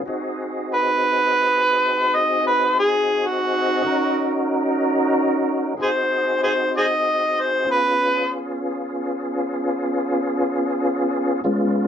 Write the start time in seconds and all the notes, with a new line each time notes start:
0.06 C4 D#4 F#4 G#4
0.74 B4
2.16 D#5
2.47 B4
2.80 G#4
3.27 F#4
3.85 C#4 D#4 F#4 A#4
5.77 C4 D#4 F#4 G#4
5.82 G#4 C5
6.43 G#4 C5
6.77 G#4 C5 D#5
7.41 C5
7.65 B3 C#4 F4 G#4
7.71 B4
11.44 G#3 B3 C#4 F4